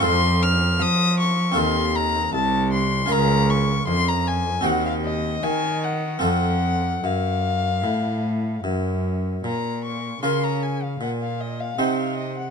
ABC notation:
X:1
M:4/4
L:1/16
Q:1/4=77
K:Bbm
V:1 name="Violin"
c'2 f'2 e'2 d'2 c'2 b2 =a2 c'2 | b2 d'2 c' b a2 g f e2 a2 g2 | g4 f8 z4 | b2 d'2 c' b a f g f e f g f e g |]
V:2 name="Harpsichord"
[CF=A]8 [CFA]8 | [DFB]8 [CGc]8 | [CF=A]16 | z4 [DFB]4 z4 [CEc]4 |]
V:3 name="Harpsichord" clef=bass
F,,4 F,4 E,,4 C,,4 | D,,4 F,,4 E,,4 E,4 | F,,4 G,,4 =A,,4 G,,4 | B,,4 D,4 B,,4 C,4 |]
V:4 name="Cello" clef=bass
F,,4 F,4 E,,4 C,,4 | D,,4 F,,4 E,,4 E,4 | F,,4 G,,4 =A,,4 G,,4 | B,,4 D,4 B,,4 C,4 |]